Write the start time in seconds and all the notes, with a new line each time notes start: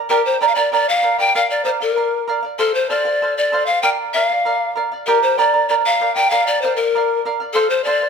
0.10 G4 A#4 D5 G5 A#5
0.26 C5
0.41 A#4 D5 G5 A#5
0.48 F5
0.55 A#4 D5 A#5
0.72 A#4 D5 G5 A#5
0.89 F5
1.03 A#4 D5 G5 A#5
1.18 A#4 D5 G5 A#5
1.35 A#4 D5 F5
1.50 D5
1.65 A#4 C5 D5 F5
1.81 A#4 D5 F5
1.96 A#4 D5 F5
2.28 A#4 D5 F5
2.43 D5 F5
2.59 A4 C5 F5
2.74 C5
2.90 A4 C5 D5 F5
3.05 C5 F5
3.22 A4 C5 F5
3.38 D5
3.52 A4 C5 F5
3.66 C5 F5
3.83 A#4 D5 F5 G5
4.14 A#4 D5 F5
4.30 D5 F5
4.45 A#4 D5 F5
4.76 A#4 D5 F5
4.92 D5 F5
5.07 G4 A#4 D5 G5 A#5
5.23 C5
5.38 A#4 D5 G5 A#5
5.53 A#4 D5 A#5
5.69 A#4 D5 G5 A#5
5.86 F5
6.00 A#4 D5 G5 A#5
6.16 A#4 D5 G5 A#5
6.30 A#4 D5 F5
6.47 D5
6.62 A#4 C5 D5 F5
6.76 A#4 F5
6.80 D5
6.95 A#4 D5 F5
7.25 A#4 D5 F5
7.40 D5 F5
7.53 A4 C5 F5
7.70 C5
7.84 A4 C5 D5 F5
8.01 C5 F5